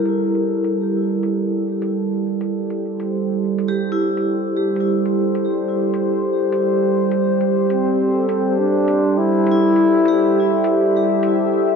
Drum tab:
HH |xxx-x-x-|xxx-x-x-|xxx-x-x-|xxx-x-x-|

HH |xxx-x-x-|